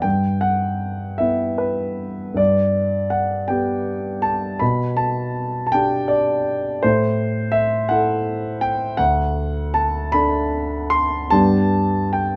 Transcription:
0.02 G2 G5
0.41 F#5
1.18 B3 E4 E5
1.58 B4
2.34 G2 D5
3.10 F#5
3.48 B3 G4 G5
4.22 A5
4.59 B2 B5
4.97 A5
5.67 A5
5.72 D4 G4 G5
6.08 D5
6.83 A2 C5
7.52 E5
7.89 E4 A4 F#5
8.61 G5
8.97 D2 F#5
9.74 A5
10.12 D4 A4 B5
10.90 C6
11.30 G2 B3 D4 G4 A5
12.13 G5

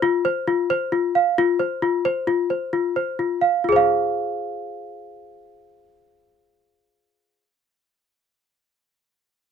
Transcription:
0.02 F4
0.25 C5
0.47 F4
0.70 C5
0.92 F4
1.15 F5
1.38 F4
1.59 C5
1.82 F4
2.05 C5
2.27 F4
2.50 C5
2.73 F4
2.96 C5
3.19 F4
3.41 F5
3.64 F4
3.69 G#4 C5
3.76 F5

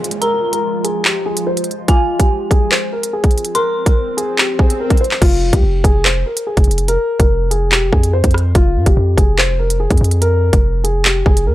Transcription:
Already playing: F3 G#3 F4 G#4, downlifter
0.04 closed hi-hat
0.11 closed hi-hat
0.21 A#4 A#5, closed hi-hat
0.53 A#4, closed hi-hat
0.84 G#4, closed hi-hat
1.05 G4, clap
1.26 G#4
1.37 closed hi-hat
1.47 C5
1.57 closed hi-hat
1.64 closed hi-hat
1.71 closed hi-hat
1.88 F4 G#5, kick, closed hi-hat, swell
2.19 G4, kick, closed hi-hat
2.51 G#4, kick, closed hi-hat
2.71 C5, clap
2.92 A#4
3.03 closed hi-hat
3.13 G#4
3.24 kick, closed hi-hat
3.31 closed hi-hat
3.38 closed hi-hat
3.45 closed hi-hat
3.55 A#4 C6, closed hi-hat
3.86 A#4, kick, closed hi-hat
4.17 G#4, closed hi-hat
4.38 G4, clap
4.59 G#4, kick
4.70 closed hi-hat
4.80 A#4
4.90 kick, closed hi-hat
4.97 C5, closed hi-hat
5.04 closed hi-hat
5.11 clap
5.22 F1 F4, kick, closed hi-hat, crash
5.53 C2 G4, kick, closed hi-hat
5.63 F1
5.84 F1 G#4, kick, closed hi-hat
6.05 C5, clap
6.26 A#4
6.37 closed hi-hat
6.47 G#4
6.57 F1, kick, closed hi-hat
6.64 F1, closed hi-hat
6.71 closed hi-hat
6.78 closed hi-hat
6.88 A#4, closed hi-hat
7.19 F1 A#4, kick, closed hi-hat
7.51 G#4, closed hi-hat
7.72 E1 G4, clap
7.82 F1
7.92 F2 G#4, kick
8.03 closed hi-hat
8.13 C5
8.24 F2, kick, closed hi-hat
8.31 cross-stick, closed hi-hat
8.38 closed hi-hat
8.55 F1 F4, kick, closed hi-hat
8.76 G#2
8.86 F1 G4, kick, closed hi-hat
8.97 F2
9.18 F1 G#4, kick, closed hi-hat
9.38 C5, clap
9.59 A#4
9.70 closed hi-hat
9.80 G#4
9.90 F2, kick, closed hi-hat
9.97 F2, closed hi-hat
10.04 closed hi-hat
10.11 closed hi-hat
10.22 A#4, closed hi-hat
10.53 F1 A#4, kick, closed hi-hat
10.84 G#4, closed hi-hat
11.05 G4, clap
11.26 F1 G#4, kick
11.37 closed hi-hat
11.47 F2 A#4

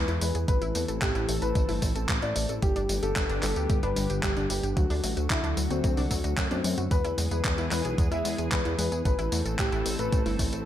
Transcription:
Already playing: E3 G#3 B3 G#4 B4
0.08 E2 E4, closed hi-hat, tambourine
0.21 E2 G#3 B4, open hi-hat, tambourine
0.35 E2 G#4, closed hi-hat, tambourine
0.48 A1 A3 C4 A4 B4, kick, closed hi-hat, tambourine
0.62 A1 E4, closed hi-hat, tambourine
0.75 E2 A3, open hi-hat, tambourine
0.88 A1 A4, closed hi-hat, tambourine
1.02 A1 A3 G4, kick, clap, closed hi-hat, tambourine
1.15 A1 E4, closed hi-hat, tambourine
1.29 A1 A3, open hi-hat, tambourine
1.42 A1 A4 B4, closed hi-hat, tambourine
1.55 A1 A3, kick, closed hi-hat, tambourine
1.69 G1 E4, open hi-hat, tambourine
1.82 A1 A3, kick, open hi-hat, tambourine
1.95 A1 A4, closed hi-hat, tambourine
2.09 A1 A3, kick, clap, closed hi-hat, tambourine
2.22 A1 E4 D5, closed hi-hat, tambourine
2.36 A1 A3, open hi-hat, tambourine
2.49 A1 A4, closed hi-hat, tambourine
2.62 G1 D3 G3 B3 G4, kick, closed hi-hat, tambourine
2.76 G1 D4, closed hi-hat, tambourine
2.89 G1 G3, open hi-hat, tambourine
3.03 G1 G4 A4, closed hi-hat, tambourine
3.16 G1 G3, kick, clap, closed hi-hat, tambourine
3.29 G1 D4, closed hi-hat, tambourine
3.43 G1 G3 A4, clap, open hi-hat, tambourine
3.56 D2 G4, closed hi-hat, tambourine
3.70 G1 G3, kick, closed hi-hat, tambourine
3.83 G1 D4 B4, closed hi-hat, tambourine
3.96 G1 G3, open hi-hat, tambourine
4.10 G1 G4, closed hi-hat, tambourine
4.23 G1 G3 G4, kick, clap, closed hi-hat, tambourine
4.37 G1 D4, closed hi-hat, tambourine
4.50 G1 G3 G4, open hi-hat, tambourine
4.63 G1 G4, closed hi-hat, tambourine
4.77 D2 F#3 A3 F#4, kick, closed hi-hat, tambourine
4.90 D2 D4, open hi-hat, tambourine
5.04 A1 F#3, open hi-hat, tambourine
5.17 D2 F#4, closed hi-hat, tambourine
5.30 D2 F#3 E4, kick, clap, closed hi-hat, tambourine
5.44 D2 D4, closed hi-hat, tambourine
5.57 D2 F#3, open hi-hat, tambourine
5.71 D2 C4 F#4, closed hi-hat, tambourine
5.84 D2 F#3, kick, closed hi-hat, tambourine
5.97 C2 D4, open hi-hat, tambourine
6.11 D2 F#3, kick, open hi-hat, tambourine
6.24 D2 F#4, closed hi-hat, tambourine
6.37 F#2 F#3, kick, clap, closed hi-hat, tambourine
6.51 F#2 C4 D4, closed hi-hat, tambourine
6.64 F#2 F#3, open hi-hat, tambourine
6.78 F#2 F#4, closed hi-hat, tambourine
6.91 E2 E3 G#3 B3 G#4 B4, kick, closed hi-hat, tambourine
7.04 E2 E4, closed hi-hat, tambourine
7.18 E2 G#3, open hi-hat, tambourine
7.31 E2 G#4 B4, closed hi-hat, tambourine
7.45 E2 G#3, kick, clap, closed hi-hat, tambourine
7.58 E2 E4, closed hi-hat, tambourine
7.71 E2 G#3 B4, clap, open hi-hat, tambourine
7.85 B1 G#4, closed hi-hat, tambourine
7.98 E2 G#3, kick, closed hi-hat, tambourine
8.11 E2 E4 E5, closed hi-hat, tambourine
8.25 E2 G#3, open hi-hat, tambourine
8.38 E2 G#4, closed hi-hat, tambourine
8.52 E2 G#3 B4, kick, clap, closed hi-hat, tambourine
8.65 E2 E4, closed hi-hat, tambourine
8.79 E2 G#3 B4, open hi-hat, tambourine
8.92 E2 G#4, closed hi-hat, tambourine
9.05 A1 E3 A3 C4 A4 B4, kick, closed hi-hat, tambourine
9.19 A1 E4, closed hi-hat, tambourine
9.32 E2 A3, open hi-hat, tambourine
9.46 A1 A4, closed hi-hat, tambourine
9.59 A1 A3 G4, kick, clap, closed hi-hat, tambourine
9.72 A1 E4, closed hi-hat, tambourine
9.86 A1 A3, open hi-hat, tambourine
9.99 A1 A4 B4, closed hi-hat, tambourine
10.12 A1 A3, kick, closed hi-hat, tambourine
10.26 G1 E4, open hi-hat, tambourine
10.39 A1 A3, kick, open hi-hat, tambourine
10.53 A1 A4, closed hi-hat, tambourine

